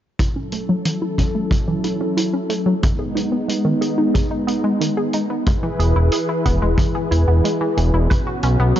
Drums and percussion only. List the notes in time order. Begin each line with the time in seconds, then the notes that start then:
0.19 kick, closed hi-hat
0.52 closed hi-hat
0.85 closed hi-hat
1.18 kick, closed hi-hat
1.51 kick, closed hi-hat
1.84 closed hi-hat
2.17 closed hi-hat
2.50 closed hi-hat
2.83 kick, closed hi-hat
3.17 closed hi-hat
3.49 closed hi-hat
3.82 closed hi-hat
4.15 kick, closed hi-hat
4.48 closed hi-hat
4.81 closed hi-hat
5.13 closed hi-hat
5.46 kick, closed hi-hat
5.80 closed hi-hat
6.12 closed hi-hat
6.45 kick, closed hi-hat
6.78 kick, closed hi-hat
7.12 closed hi-hat
7.45 closed hi-hat
7.77 closed hi-hat
8.11 kick, closed hi-hat
8.43 closed hi-hat
8.76 closed hi-hat